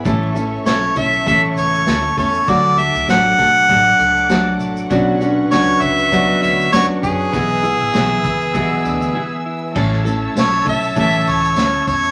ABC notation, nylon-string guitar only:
X:1
M:4/4
L:1/8
Q:"Swing 16ths" 1/4=99
K:A
V:1 name="Nylon-string guitar"
[A,,E,A,CEA] [A,CEA] [A,CEA] [A,CEA] [A,,E,A,CEA]2 [A,CEA] [A,CEA] | [D,F,A,FA] [A,FA] [F,A,FA] [A,FA] [F,A,FA]2 [F,A,FA]2 | [B,,F,CDF] [CDF] [F,CDF]2 [B,,F,CDF]2 [F,CDF]2 | [B,,E,B,EG] [B,EG] [E,B,EG]2 [B,,E,B,EG]2 [E,B,EG]2 |
[A,,E,A,CEA] [A,CEA] [A,CEA] [A,CEA] [A,,E,A,CEA]2 [A,CEA]2 |]